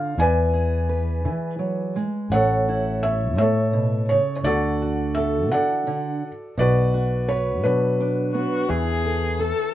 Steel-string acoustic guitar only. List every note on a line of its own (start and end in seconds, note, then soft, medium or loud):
0.00 0.18 D3 medium
0.00 0.15 F4 medium
0.00 0.19 A4 medium
0.18 1.24 E3 medium
0.53 2.27 G#4 medium
0.89 2.27 B4 medium
1.25 1.58 E3 soft
1.59 1.95 F#3 medium
1.96 2.31 G#3 medium
2.31 3.36 A2 medium
2.68 4.45 E4 medium
3.04 4.40 C#5 medium
3.38 3.73 A2 medium
3.73 4.08 B2 medium
4.11 4.45 C#3 medium
4.44 5.50 D3 medium
4.82 6.54 F#4 medium
5.17 6.58 A4 medium
5.52 5.86 E3 medium
5.87 6.22 D3 medium
6.58 8.66 B2 medium
6.94 8.66 F#4 medium
7.28 8.65 B4 medium
7.65 8.66 F#3 medium
8.00 8.66 D4 medium
8.34 8.65 B3 medium
8.69 9.71 E3 medium
9.05 9.38 A4 medium
9.39 9.74 A4 medium